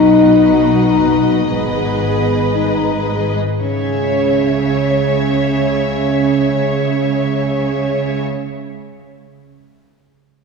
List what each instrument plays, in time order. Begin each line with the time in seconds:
Already playing: double bass section B1, cello section B2, french horn section D#4, viola section F#4, violin section B4 D#5
0.96 taiko
1.48 double bass section G#1, cello section G#2, french horn section B3, viola section G#4, violin section B4
2.54 french horn section D#4
3.60 double bass section C#2, cello section C#3, french horn section C#4, viola section G#4, violin section C#5 E5